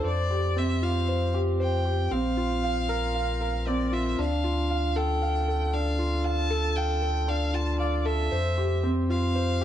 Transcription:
0.04 sub bass F2, felt piano C5, violin D5
0.31 felt piano G4
0.56 felt piano C4, violin E5
0.82 felt piano F4, violin F5
1.08 felt piano C5
1.34 felt piano G4
1.60 felt piano C5, violin G5
1.85 felt piano G4
2.11 sub bass A#1, felt piano C4, violin F5
2.37 felt piano F4
2.64 felt piano F5
2.89 felt piano A#4
3.14 felt piano F5
3.41 felt piano A#4
3.66 felt piano C4, violin D5
3.92 felt piano F4, violin E5
4.19 sub bass D2, felt piano D4, violin F5
4.44 felt piano F4
4.70 felt piano F5
4.96 felt piano A4, violin G5
5.22 felt piano F5
5.48 felt piano A4
5.73 felt piano D4, violin F5
5.99 felt piano F4
6.24 felt piano F5, violin A5
6.50 felt piano A4
6.76 felt piano F5, violin G5
7.02 felt piano A4
7.28 felt piano D4, violin F5
7.54 felt piano F4, violin A5
7.79 violin D5, felt piano F5
8.05 felt piano A4, violin E5
8.32 sub bass F2, felt piano C5
8.58 felt piano G4
8.83 felt piano C4
9.10 felt piano F4, violin F5
9.35 felt piano C5

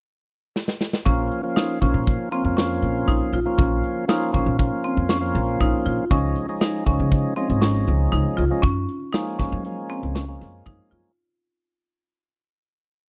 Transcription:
0.56 snare
0.68 snare
0.81 snare
0.93 snare
1.05 upright bass A#1, tonewheel organ F3 A#3 C#4 F4, marimba C#4, kick, closed hi-hat
1.31 closed hi-hat
1.43 tonewheel organ F3 A#3 C#4 F4
1.56 marimba D#4, snare, closed hi-hat
1.81 upright bass A#1, tonewheel organ F3 A#3 C#4 F4, marimba C#4, kick, closed hi-hat
1.94 upright bass A#2
2.07 kick, closed hi-hat
2.31 tonewheel organ F3 A#3 C#4 F4, marimba C4, closed hi-hat
2.44 upright bass F2, tonewheel organ F3 A#3 C#4 F4
2.57 marimba C#4, snare, closed hi-hat
2.82 upright bass A#1, closed hi-hat
3.08 upright bass A#1, marimba D#4, closed hi-hat
3.33 upright bass A#1, marimba F4, closed hi-hat
3.46 tonewheel organ F3 A#3 C#4 F4
3.58 upright bass A#1, marimba C#4, kick, closed hi-hat
3.84 closed hi-hat
4.08 tonewheel organ F3 A#3 C#4 F4, marimba D#4, snare, closed hi-hat
4.32 upright bass A#1, tonewheel organ F3 A#3 C#4 F4, marimba C#4, kick, closed hi-hat
4.46 upright bass A#2
4.58 tonewheel organ F3 A#3 C#4 F4, kick, closed hi-hat
4.84 marimba C4, closed hi-hat
4.97 upright bass F2
5.09 marimba C#4, snare, closed hi-hat
5.21 tonewheel organ F3 A#3 C#4 F4
5.35 upright bass A#1, closed hi-hat
5.60 upright bass A#1, marimba D#4, closed hi-hat
5.86 upright bass A#1, marimba F4, closed hi-hat
6.11 upright bass C#2, tonewheel organ F3 G#3 C#4 D#4, marimba C#4, kick, closed hi-hat
6.36 closed hi-hat
6.49 tonewheel organ F3 G#3 C#4 D#4
6.61 marimba D#4, snare, closed hi-hat
6.86 upright bass C#2, tonewheel organ F3 G#3 C#4 D#4, marimba C#4, kick, closed hi-hat
6.99 upright bass C#3
7.11 kick, closed hi-hat
7.36 tonewheel organ F3 G#3 C#4 D#4, marimba C4, closed hi-hat
7.50 upright bass G#1, tonewheel organ F3 G#3 C#4 D#4
7.62 marimba C#4, snare, closed hi-hat
7.87 upright bass C#2, closed hi-hat
8.12 upright bass C#2, marimba D#4, closed hi-hat
8.37 upright bass C#2, marimba F4, closed hi-hat
8.50 tonewheel organ F3 G#3 C#4 D#4
8.62 upright bass F#2, marimba C#4, kick, closed hi-hat
8.89 closed hi-hat
9.13 tonewheel organ F3 G#3 A#3 C#4, marimba D#4, snare, closed hi-hat
9.39 upright bass F#2, tonewheel organ F3 G#3 A#3 C#4, marimba C#4, kick, snare, closed hi-hat
9.52 upright bass F#3
9.65 tonewheel organ F3 G#3 A#3 C#4, closed hi-hat
9.90 marimba C4, closed hi-hat
10.03 upright bass C#2
10.15 marimba C#4, snare, closed hi-hat
10.28 tonewheel organ F3 G#3 A#3 C#4
10.41 upright bass F#2, snare, closed hi-hat
10.66 upright bass F#2, marimba D#4, kick, closed hi-hat
10.91 upright bass F#2, marimba F4, closed hi-hat

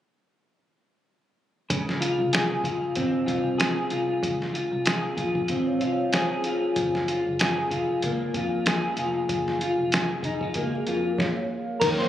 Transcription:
1.70 picked electric bass C#2, clean electric guitar C#3, kick, closed hi-hat
1.89 snare
2.01 clean electric guitar F4, closed hi-hat
2.19 picked electric bass C2
2.33 clean electric guitar G#4, snare, closed hi-hat
2.64 picked electric bass A#1, clean electric guitar F4, kick, closed hi-hat
2.95 picked electric bass G#1, clean electric guitar C4, kick, closed hi-hat
3.26 picked electric bass C2, clean electric guitar F4, kick, closed hi-hat
3.58 clean electric guitar G#4, snare, closed hi-hat
3.90 picked electric bass C2, clean electric guitar F4, closed hi-hat
4.22 picked electric bass C#2, kick, closed hi-hat
4.42 snare
4.54 clean electric guitar F4, closed hi-hat
4.72 picked electric bass C2
4.86 clean electric guitar G#4, snare, closed hi-hat
5.16 picked electric bass A#1, clean electric guitar F4, kick, closed hi-hat
5.35 kick
5.48 picked electric bass G#1, clean electric guitar C4, kalimba F5, kick, closed hi-hat
5.67 kalimba C#5
5.81 picked electric bass C2, clean electric guitar F4, kalimba F5, closed hi-hat
6.00 kalimba C#5
6.12 clean electric guitar G#4, kalimba C5, snare, closed hi-hat
6.30 kalimba G#4
6.44 picked electric bass F1, clean electric guitar F4, closed hi-hat
6.76 picked electric bass F#1, kick, closed hi-hat
6.95 snare
7.08 clean electric guitar F4, closed hi-hat
7.26 picked electric bass F#1
7.39 clean electric guitar G#4, snare, closed hi-hat
7.70 picked electric bass F1, clean electric guitar F4, kick, closed hi-hat
8.02 picked electric bass C#2, clean electric guitar A#3, kick, closed hi-hat
8.34 picked electric bass F2, clean electric guitar F4, kick, closed hi-hat
8.66 clean electric guitar G#4, snare, closed hi-hat
8.97 picked electric bass F1, clean electric guitar F4, closed hi-hat
9.29 picked electric bass F#1, kick, closed hi-hat
9.48 snare
9.61 clean electric guitar F4, closed hi-hat
9.79 picked electric bass F1
9.92 clean electric guitar G#4, snare, closed hi-hat
10.23 picked electric bass F1, clean electric guitar D#4, kick, closed hi-hat
10.41 clean electric guitar F4, kick
10.54 picked electric bass C#2, clean electric guitar A#3, kalimba F#4, kick, closed hi-hat
10.74 kalimba G#4
10.87 picked electric bass F2, clean electric guitar F4, kalimba A#4, closed hi-hat
11.18 kalimba C#5, kick, snare
11.36 kalimba F5
11.80 picked electric bass D#2, clean electric guitar D#3, analog synth pad F#3 A#3 C#4 D#4, synth keys A#4, kick, closed hi-hat, crash
11.98 synth keys C5, snare

